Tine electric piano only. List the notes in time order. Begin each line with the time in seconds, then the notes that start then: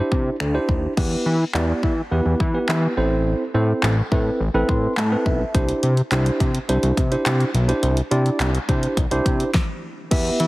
Already playing: D4 E4 G4 C5
0.54 D4 E4 G4 C5
0.97 B3 E4 G4 B4
1.54 B3 E4 G4 D5
2.11 B3 E4 G4 B4
2.54 B3 E4 G4 B4
2.97 C4 E4 A4 C5
3.54 C4 E4 A4 C5
4.12 C4 E4 A4 B4
4.54 C4 E4 A4 B4
4.69 C6
4.98 A5
5.12 C4 E4 A4 B4
5.26 E5
5.55 D4 E4 G4 C5
6.12 D4 E4 G4 C5
6.69 D4 E4 G4 C5
7.11 D4 E4 G4 C5
7.68 D4 E4 G4 C5
8.11 D4 E4 G4 D5
8.69 D4 E4 G4 C5
9.11 D4 E4 G4 C5
10.11 B3 E4 G4 B4 E5